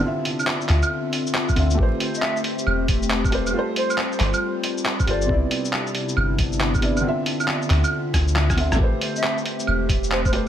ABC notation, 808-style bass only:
X:1
M:4/4
L:1/16
Q:"Swing 16ths" 1/4=137
K:Am
V:1 name="808-style bass" clef=bass
z6 D,, z6 z D,,2 | A,,, z6 z E,,,2 E,,,6 | z6 G,,, z6 z G,,,2 | C,, z6 z G,,,2 G,,,6 |
z6 D,, z3 D,,4- D,, A,,, | z8 E,,,2 E,,,6 |]